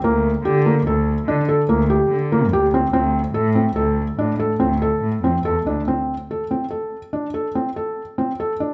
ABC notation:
X:1
M:7/4
L:1/8
Q:1/4=144
K:Gdor
V:1 name="Felt piano"
B,2 G B, A2 D A B, G2 B, G C | C2 A C A2 D A C A2 C A D | C2 A C A2 D A C A2 C A D |]
V:2 name="Cello" clef=bass
D,,2 D,2 D,,2 D, z D,,2 D,2 D,,2 | D,,2 A,,2 D,,2 A,, z D,,2 A,, F,, E,, D,, | z12 z2 |]